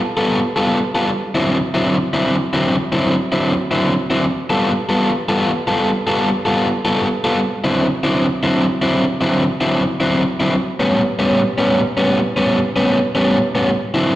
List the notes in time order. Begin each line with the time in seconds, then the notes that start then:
0.17 G3 B3 F4 A4
0.56 G3 B3 F4 A4
0.95 G3 B3 F4 A4
1.35 D3 F#3 C4 E4
1.74 D3 F#3 C4 E4
2.13 D3 F#3 C4 E4
2.53 D3 F#3 C4 E4
2.92 D3 F#3 C4 E4
3.32 D3 F#3 C4 E4
3.71 D3 F#3 C4 E4
4.10 D3 F#3 C4 E4
4.50 G3 B3 F4 A4
4.89 G3 B3 F4 A4
5.29 G3 B3 F4 A4
5.67 G3 B3 F4 A4
6.07 G3 B3 F4 A4
6.45 G3 B3 F4 A4
6.85 G3 B3 F4 A4
7.24 G3 B3 F4 A4
7.64 D3 F#3 C4 E4
8.03 D3 F#3 C4 E4
8.43 D3 F#3 C4 E4
8.82 D3 F#3 C4 E4
9.21 D3 F#3 C4 E4
9.61 D3 F#3 C4 E4
10.00 D3 F#3 C4 E4
10.40 D3 F#3 C4 E4
10.80 A2 G3 B3 C#4
11.19 A2 G3 B3 C#4
11.58 A2 G3 B3 C#4
11.97 A2 G3 B3 C#4
12.37 A2 G3 B3 C#4
12.76 A2 G3 B3 C#4
13.15 A2 G3 B3 C#4
13.55 A2 G3 B3 C#4
13.94 D3 F#3 C4 E4